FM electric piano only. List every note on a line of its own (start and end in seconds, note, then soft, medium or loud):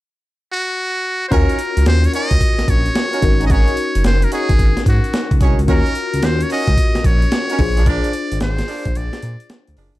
1.31 3.18 C#4 medium
1.31 3.19 F4 medium
1.31 3.19 F#4 medium
1.31 3.20 A#4 medium
3.22 3.31 C4 medium
3.22 5.37 D#4 medium
3.22 5.37 F#4 medium
3.22 5.37 A#4 medium
3.28 5.39 C#4 medium
5.67 7.55 C#4 medium
5.67 7.55 F4 medium
5.67 7.55 F#4 medium
5.67 7.56 A#4 medium
7.58 9.73 D4 medium
7.58 9.73 F4 medium
7.58 9.73 G#4 medium
7.58 9.74 C5 medium